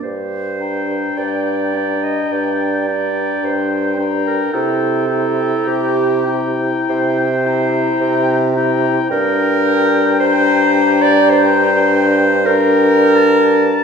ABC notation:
X:1
M:4/4
L:1/16
Q:1/4=53
K:Gm
V:1 name="Flute"
z2 b4 b4 b4 b2 | b2 b4 b4 b4 b2 | b12 b4 |]
V:2 name="Oboe"
z2 g4 g4 g4 g2 | g2 g4 g4 g4 g2 | g12 g2 a2 |]
V:3 name="Clarinet"
c4 d3 e d4 c3 B | A4 G3 z c6 z2 | B4 c3 d c4 B4 |]
V:4 name="French horn"
z2 D4 D4 D4 D2 | =E2 E4 E4 E4 E2 | D12 D4 |]
V:5 name="Bassoon" clef=bass
G,,4 G,,4 G,,4 G,,4 | C,4 C,4 C,4 C,4 | G,,16 |]